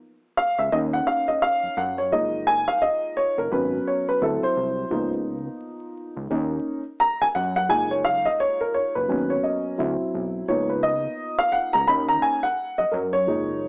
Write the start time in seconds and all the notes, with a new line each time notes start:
0.37 F5
0.58 C#2 E5
0.72 D#2 A#3 C#4 D#4 D#5
0.93 F#5
1.07 F5
1.28 D#5
1.42 F5
1.63 F#2
1.77 F#2 F#5
1.98 C#5
2.12 F#1 F3 G#3 A#3 D#4 D#5
2.47 G#5
2.68 F5
2.82 D#5
3.17 C#5
3.38 F#1 A#4
3.51 G#1 F#3 B3 C#4 A#4 B4
3.87 C#5
4.09 B4
4.21 D2 F#3 C4 E4 A4
4.43 C2 C5
4.56 C2
4.90 C#2 F3 A#3 B3 D#4
6.17 C#2
6.30 D#2 A#3 C#4 D#4
7.00 A#5
7.22 F#2 G#5
7.35 F#2 F#5
7.56 F#5
7.69 F#1 F3 G#3 A#3 D#4 G#5
7.91 C#5
8.05 F5
8.25 D#5
8.40 C#5
8.61 A#4
8.74 C#5
8.95 F#1 B4
9.08 G#1 F#3 A#3 B3 C#4
9.30 C#5
9.43 D#5
9.78 D2 F#3 C4 E4
10.00 B1
10.14 B1
10.48 C#2 F3 A#3 B3 D#4 C#5
10.69 B4
10.83 D#5
11.38 F5
11.52 F#5
11.73 C#2 A#5
11.87 D#2 A#3 C#4 D#4 B5
12.09 A#5
12.22 G#5
12.43 F#5
12.78 F#2 D#5
12.91 F#2 A#4
13.13 C#5
13.27 F#1 F3 G#3 A#3 D#4